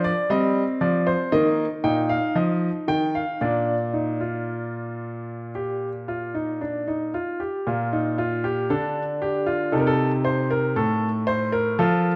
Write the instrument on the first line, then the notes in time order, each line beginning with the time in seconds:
grand piano
Already playing: F3 D4
0.04 D5
0.30 G3 C4 D#5
0.81 F3 D5
1.07 C5
1.32 D#3 A#3 D#5
1.84 A#2 D#4 G5
2.09 F5
2.35 F3 D#5
2.88 D#3 G5
3.15 F5
3.41 A#2 D4 D5
3.93 D#4
4.20 F4
5.55 G4
6.08 F4
6.34 D#4
6.61 D4
6.88 D#4
7.14 F4
7.40 G4
7.67 A#2 F4
7.93 D#4
8.18 F4
8.44 G4
8.70 D3 D4 A4
9.22 G4
9.46 F4
9.72 C3 D#4 A4
9.80 A#4
9.87 A4
10.25 C5
10.51 A#4
10.76 A2 A4
11.27 C5
11.52 A#4
11.79 F3 F4 A4